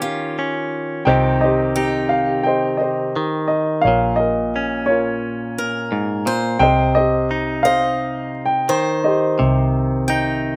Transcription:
Already playing: clean electric guitar D#3 C#4 G4, steel-string acoustic guitar D#4
0.02 steel-string acoustic guitar F4
0.39 clean electric guitar C#4
1.05 fingered electric bass C2, clean electric guitar C3 D#3 C4, grand piano C5 D#5 G5
1.09 clean electric guitar D#4 G4
1.41 grand piano G4 C5 D#5
1.76 clean electric guitar D#4, steel-string acoustic guitar G4
2.09 grand piano F5
2.43 grand piano C5 D#5 G5
2.77 grand piano G4 D#5
2.81 grand piano C5
3.16 clean electric guitar D#3
3.48 grand piano D#5
3.81 fingered electric bass A#1, grand piano A#4 C#5 F5
3.87 clean electric guitar A#2
4.16 grand piano A#4 D#5
4.56 clean electric guitar C#4
4.86 grand piano F4 A#4 C#5
5.58 steel-string acoustic guitar A#4
5.92 clean electric guitar G#2
6.26 clean electric guitar A#2, steel-string acoustic guitar C5
6.59 fingered electric bass C2, clean electric guitar C3, grand piano C5 D#5 G5
6.95 grand piano G4 C5 D#5
7.31 clean electric guitar D#4
7.63 grand piano C5 F5, steel-string acoustic guitar D#5
8.46 grand piano G5
8.69 clean electric guitar D#3, steel-string acoustic guitar C5
9.04 grand piano G4 C5 D#5
9.39 fingered electric bass C2, clean electric guitar C3
10.08 clean electric guitar D#4, steel-string acoustic guitar G5

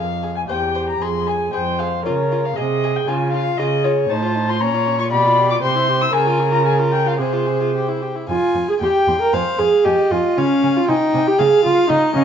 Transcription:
Already playing: cello F2, violin F5
0.23 violin G#4
0.36 violin G#5
0.49 cello E2, viola G4, violin C5 G5
0.75 violin C5
0.89 violin A#5
1.01 cello F2, viola G#4, violin G#4 C6
1.27 violin G#4 G#5
1.53 cello F2, violin G#4 G5, viola C5
1.79 violin G#4 F5
2.05 cello C#3, violin F4 C#5, viola A#4
2.32 violin F4
2.45 violin F5
2.56 cello C3, viola G#4, violin G#4 D#5
2.84 violin G#4
2.96 violin G5
3.07 cello C#3, viola F4, violin F4 G#5
3.32 violin F4 F5
3.58 cello C#3, violin F4 D#5, viola G#4
3.84 violin F4 C#5
4.10 cello A2, violin D#4 A5, viola C5
4.22 violin F4
4.35 violin D#4
4.48 violin F4 C6
4.61 cello A#2, violin C#4 A#5, viola C#5
4.74 violin F4
4.87 violin C#4
4.99 violin F4 C#6
5.11 cello B2, violin G4 B5, viola D5
5.26 violin F4
5.37 violin G4
5.50 violin F4 D6
5.62 cello C3, violin G4 C6, viola C5
5.75 violin E4
5.89 violin G4
6.01 violin E4 E6
6.13 cello C#3, violin G#4 G#5, viola A#4
6.27 violin F4
6.40 violin G#4
6.52 violin F4 A#5
6.66 violin G#4 G#5
6.79 violin F4
6.92 violin G#4 G5
7.06 violin F4 F5
7.19 cello C3, viola G#4, violin G#4 C5
7.33 violin F4
7.47 violin G#4
7.60 violin F4
7.75 violin G4
7.88 violin E4
8.02 violin G4
8.15 violin E4
8.29 cello F2, viola F4, violin G#5
8.54 cello F2, violin G#5
8.69 viola G#4
8.81 cello E2, viola G4, violin G5 C6
9.08 cello E2, violin C6
9.22 viola A#4
9.33 cello F2, viola C5, violin F5 G#5
9.58 cello F2, viola G#4, violin G#5
9.85 cello F2, viola G4, violin D#5 G#5
10.11 cello F2, viola F4, violin G#5
10.37 cello C#3, viola C#4, violin F5 G#5
10.63 cello C#3, violin G#5
10.76 viola F4
10.88 cello C3, viola D#4, violin G5 G#5
11.14 cello C3, violin G#5
11.27 viola G4
11.38 cello C#3, viola G#4, violin F5
11.64 cello C#3, viola F4, violin F5
11.89 cello C#3, viola D#4, violin D#5 F5
12.15 cello C#3, viola C#4, violin F5

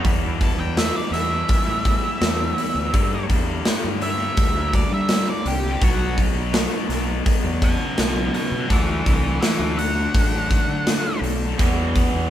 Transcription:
0.04 distorted electric guitar E2 B2, fingered electric bass E2, clean electric guitar E3 G3 B3 E4, kick, open hi-hat
0.22 clean electric guitar G3 B3 E4
0.39 clean electric guitar E3 G3 B3 E4, lead electric guitar A5, kick, open hi-hat
0.58 fingered electric bass E2, clean electric guitar G3 B3 E4, lead electric guitar G5
0.77 clean electric guitar E3 G3 B3 E4, lead electric guitar E5, snare, open hi-hat
0.96 lead electric guitar D5
1.11 fingered electric bass E2, clean electric guitar E3 G3 B3 E4, lead electric guitar E5, snare, open hi-hat
1.30 clean electric guitar G3 B3 E4
1.49 kick, open hi-hat
1.67 fingered electric bass A2, clean electric guitar G3 B3 E4
1.84 clean electric guitar E3 G3 B3 E4, kick, open hi-hat
2.02 clean electric guitar G3 B3 E4
2.20 fingered electric bass E2, clean electric guitar E3 G3 B3 E4, snare, open hi-hat
2.56 clean electric guitar E3 G3 B3 E4, open hi-hat
2.75 fingered electric bass D2
2.93 clean electric guitar G2 D3 G3 A#3 D4, fingered electric bass G2, kick, open hi-hat
3.12 clean electric guitar G3 A#3 D4
3.29 fingered electric bass E2, clean electric guitar D3 G3 A#3 D4, kick, open hi-hat
3.48 clean electric guitar G3 A#3 D4
3.65 clean electric guitar G2 D3 G3 A#3 D4, snare, open hi-hat
3.84 fingered electric bass G2
4.01 clean electric guitar D3 G3 A#3 D4, lead electric guitar E5, open hi-hat
4.19 clean electric guitar G3 A#3 D4
4.37 fingered electric bass D2, kick, open hi-hat
4.54 clean electric guitar G3 A#3 D4
4.73 clean electric guitar D3 G3 A#3 D4, lead electric guitar D5, kick, open hi-hat
4.91 fingered electric bass G3, clean electric guitar G3 A#3 D4, lead electric guitar E5
5.08 clean electric guitar G2 D3 G3 A#3 D4, snare, open hi-hat
5.30 lead electric guitar D5
5.45 fingered electric bass C2, clean electric guitar D3 G3 A#3 D4, lead electric guitar G4, open hi-hat
5.80 fingered electric bass B1, clean electric guitar B2 F#3 B3 D4, kick, open hi-hat
5.84 lead electric guitar F#4
5.99 clean electric guitar F#3 B3 D4
6.16 clean electric guitar B2 F#3 B3 D4, kick, open hi-hat
6.34 fingered electric bass B1, clean electric guitar F#3 B3 D4
6.51 clean electric guitar B2 F#3 B3 D4, snare, open hi-hat
6.88 fingered electric bass B1, clean electric guitar B2 F#3 B3 D4, snare, open hi-hat
7.07 clean electric guitar F#3 B3 D4
7.26 kick, open hi-hat
7.43 fingered electric bass E2, clean electric guitar F#3 B3 D4
7.62 clean electric guitar B2 F#3 B3 D4, lead electric guitar F#5 A5, kick, open hi-hat
7.79 clean electric guitar F#3 B3 D4
7.97 fingered electric bass B1, clean electric guitar B2 F#3 B3 D4, lead electric guitar F#5, snare, open hi-hat
8.01 lead electric guitar A5
8.34 clean electric guitar B2 F#3 B3 D4, lead electric guitar F#5 A5, open hi-hat
8.51 fingered electric bass B2
8.68 fingered electric bass D2, clean electric guitar D3 F#3 A3 D4, lead electric guitar B4, kick, open hi-hat
8.73 lead electric guitar E5
8.87 clean electric guitar F#3 A3 D4
9.05 fingered electric bass C2, clean electric guitar D3 F#3 A3 D4, lead electric guitar B4 E5, kick, open hi-hat
9.23 clean electric guitar F#3 A3 D4
9.41 clean electric guitar D3 F#3 A3 D4, lead electric guitar B4 E5, snare, open hi-hat
9.59 fingered electric bass D2
9.78 clean electric guitar D3 F#3 A3 D4, lead electric guitar F#5, open hi-hat
9.95 clean electric guitar F#3 A3 D4
10.14 fingered electric bass A1, kick, open hi-hat
10.32 clean electric guitar F#3 A3 D4
10.50 clean electric guitar D3 F#3 A3 D4, kick, open hi-hat
10.67 fingered electric bass D3, clean electric guitar F#3 A3 D4
10.87 clean electric guitar D3 F#3 A3 D4, snare, open hi-hat
11.21 fingered electric bass B1, clean electric guitar D3 F#3 A3 D4, open hi-hat
11.58 distorted electric guitar E2 B2 E3, fingered electric bass E2, kick, open hi-hat
11.96 kick, open hi-hat
12.13 fingered electric bass E2

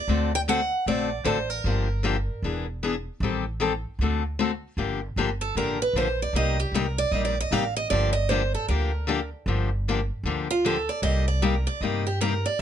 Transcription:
Already playing: steel-string acoustic guitar D5
0.08 upright bass D2, steel-string acoustic guitar D3 A3 C4 F#4 A4
0.35 steel-string acoustic guitar G5
0.48 steel-string acoustic guitar D3 A3 C4 F#4 A4 F#5
0.86 upright bass A#1, steel-string acoustic guitar D3 A3 C4 F#4 A4 D5
1.24 upright bass A1, steel-string acoustic guitar D3 A3 C4 F#4 A4 C5
1.50 steel-string acoustic guitar A#4
1.64 upright bass G1, steel-string acoustic guitar D3 F3 A#3 D4 G4
2.03 steel-string acoustic guitar D3 F3 A#3 D4 G4
2.42 upright bass E1, steel-string acoustic guitar E3 B3 D4 G#4
2.83 steel-string acoustic guitar E3 B3 D4 G#4
3.20 upright bass A1, steel-string acoustic guitar D#3 G3 C4 G4 A4
3.60 steel-string acoustic guitar D#3 G3 C4 G4 A4
3.99 upright bass D2, steel-string acoustic guitar D3 A3 C4 F#4
4.03 steel-string acoustic guitar A4
4.39 steel-string acoustic guitar D3 A3 C4 F#4 A4
4.77 upright bass G1, steel-string acoustic guitar D3 F3 A#3 D4 G4
5.16 upright bass G1, steel-string acoustic guitar D3 F3 A#3 D4 G4
5.41 steel-string acoustic guitar A4
5.55 upright bass A1, steel-string acoustic guitar D3 F3 A#3 D4 G4 A#4
5.82 steel-string acoustic guitar B4
5.93 upright bass A#1, steel-string acoustic guitar D3 F3 A#3 D4 G4
5.97 steel-string acoustic guitar C5
6.22 steel-string acoustic guitar D5
6.33 upright bass C2, steel-string acoustic guitar C3 G3 A#3 D#4 G4 D#5
6.60 steel-string acoustic guitar G4
6.72 upright bass C2, steel-string acoustic guitar C3 G3 A#3 D#4 G4 A#4
6.98 steel-string acoustic guitar D5
7.12 upright bass A#1, steel-string acoustic guitar C3 G3 A#3 D#4 G4 D#5
7.25 steel-string acoustic guitar D5
7.40 steel-string acoustic guitar D#5
7.51 upright bass A1, steel-string acoustic guitar C3 G3 A#3 D#4 G4 F5
7.76 steel-string acoustic guitar D#5
7.90 upright bass G1, steel-string acoustic guitar D3 F3 A#3 D4 G4 D5
8.13 steel-string acoustic guitar D#5
8.29 steel-string acoustic guitar D3 F3 A#3 D4 G4 C5
8.55 steel-string acoustic guitar A4
8.68 upright bass D2, steel-string acoustic guitar D3 F3 A#3 D4 G4 A#4
9.07 steel-string acoustic guitar D3 F3 A#3 D4 G4
9.46 upright bass G1, steel-string acoustic guitar D3 F3 A#3 D4 G4
9.88 steel-string acoustic guitar D3 F3 A#3 D4 G4
10.23 upright bass D2, steel-string acoustic guitar D3 F3 A#3 D4 G4
10.51 steel-string acoustic guitar F4
10.65 steel-string acoustic guitar D3 F3 A#3 D4 G4 A4
10.89 steel-string acoustic guitar D5
11.02 upright bass C2, steel-string acoustic guitar C3 G3 A#3 D#4 G4 D#5
11.28 steel-string acoustic guitar D5
11.42 steel-string acoustic guitar C3 G3 A#3 D#4 G4 A#4
11.67 steel-string acoustic guitar D5
11.81 upright bass G2, steel-string acoustic guitar C3 G3 A#3 D#4 G4 D#5
12.07 steel-string acoustic guitar G4
12.21 steel-string acoustic guitar C3 G3 A#3 D#4 G4 A#4
12.46 steel-string acoustic guitar D5

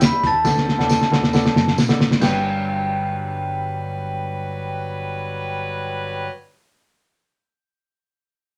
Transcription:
0.01 glockenspiel B6, snare, closed hi-hat, tambourine
0.05 vibraphone B5
0.11 upright piano G4 B4 D5 E5
0.23 fingered electric bass E2, vibraphone A5, glockenspiel A6, kick, snare, closed hi-hat
0.33 fingered electric bass D#2
0.44 fingered electric bass D2, upright piano D3 A4 B4 D5 F#5, kick, snare, tambourine
0.57 snare
0.68 snare
0.78 fingered electric bass E2, upright piano A4 B4 D5 F#5, snare
0.89 snare, tambourine
1.01 snare
1.10 fingered electric bass D2, upright piano A4 B4 D5 F#5, snare
1.21 fingered electric bass E2, snare
1.33 upright piano A4 B4 D5 F#5, snare, tambourine
1.46 snare
1.54 fingered electric bass F#2, snare
1.68 snare
1.77 fingered electric bass B2, snare, tambourine
1.88 upright piano A4 B4 D5 F#5, snare
1.99 fingered electric bass A1, snare
2.10 fingered electric bass G#1, snare
2.19 fingered electric bass G1, upright piano G2 G3 B4 D5, horn section F#3 G3 B4, vibraphone G5, glockenspiel G6, snare, tambourine, crash
2.23 upright piano G5

